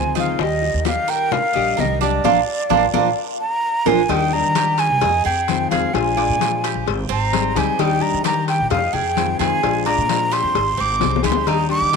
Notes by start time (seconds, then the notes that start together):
Already playing: D2 D#3 G#3 C4 F4 C5 G#5
0.15 D#3 G#3 C4 D#4 F4 F5, high bongo, high conga, short guiro
0.39 D#2 D#3 G3 D#5, high bongo, high conga, long guiro
0.43 G4
0.62 high bongo, high conga
0.74 D#2
0.85 G4 F5, high bongo, high conga, short guiro
1.08 A#4 G5, short guiro
1.31 F5, muted nylon-string guitar stroke, high bongo, high conga, low conga, long guiro
1.53 A#1 G3 D4 G4 D#5, high bongo, high conga
1.77 C2 D#3 G3 D4 G4 A#4 D#5, high bongo, low bongo, high conga, short guiro
2.01 G3 D4 G4 D5, high bongo, high conga, short guiro
2.24 A#1 F3 A#3 D4 F4 A#4, low bongo, high conga, long guiro
2.69 A#1 F3 A#3 D4 F4 A#4, low bongo, high conga, long guiro
2.93 A#1 F3 A#3 D4 F4 A#4, low bongo, high conga, long guiro
3.41 A#5
3.86 A#1 F3 A#3 D4 F4 A#4 G#5, low bongo, high conga, long guiro
4.09 D#2 D#3 G3 D4 D#4 G4 G5, cowbell, high conga, long guiro
4.32 G3 D4 G4 A#5, high conga
4.43 D#3
4.55 D#3 G3 D4 G4, cowbell, high conga, short guiro
4.78 G#5, cowbell, short guiro
4.90 C2
5.01 F2 D#5, muted nylon-string guitar stroke, cowbell, high conga, low conga, long guiro
5.25 F2 G#4 G5, high conga
5.48 D#3 G#3 C4 F4, cowbell, high conga, short guiro
5.71 F2 D#3 G#3 C4 F4 G#4 F5, cowbell, high conga, short guiro
5.93 A#1 F3 G#3 D4 F4 G#5, cowbell, high conga, long guiro
6.17 G#3 D4 F4 D5, cowbell, high conga
6.30 A#2
6.39 F3 G#3 D4 F4, cowbell, high conga, short guiro
6.64 G4, cowbell, high conga, short guiro
6.75 A#1
6.86 G#1, muted nylon-string guitar stroke, cowbell, high conga, long guiro
7.09 G#1 C4 A#5, high conga
7.32 G3 C4 D#4 G#4, cowbell, high conga, short guiro
7.56 D2 G3 C4 D#4 G4 G#4 G#5, cowbell, high conga, short guiro
7.79 D#2 D#3 G3 D4 D#4 G4 G5, cowbell, high conga, long guiro
8.00 G3 D4 G4 A#5, high conga
8.14 D#3
8.23 D#3 G3 D4 G4 A#5, cowbell, high conga, short guiro
8.48 G5, cowbell, short guiro
8.60 A#1
8.70 F2 D#5 F5, muted nylon-string guitar stroke, cowbell, high conga, low conga, long guiro
8.93 F2 G#4 G5, high conga, low conga
9.16 D#3 G#3 C4 F4, cowbell, high conga, short guiro
9.39 F2 D#3 G#3 C4 F4 G#4 G#5, cowbell, high conga, short guiro
9.63 A#1 F3 G#3 D4 F4, cowbell, high conga, long guiro
9.85 G#3 D4 F4 D5 A#5, cowbell, high conga
9.98 A#2
10.09 F3 G#3 D4 F4, cowbell, high conga, short guiro
10.31 G4 C6, cowbell, high conga, short guiro
10.43 F2
10.55 G#1, muted nylon-string guitar stroke, cowbell, high conga, long guiro
10.77 G#1 C4 D6, high conga
11.00 C2 G3 C4 D#4 G#4, cowbell, high bongo, high conga, short guiro
11.16 low bongo
11.23 D2 G3 C4 D#4 G4 G#4 C6, cowbell, high conga, short guiro
11.32 low bongo
11.46 D#2 D#3 G3 D4 D#4 G4 A#5, cowbell, high conga, long guiro
11.69 G3 D4 G4 D6, high conga
11.82 D#3
11.92 D#3 G3 D4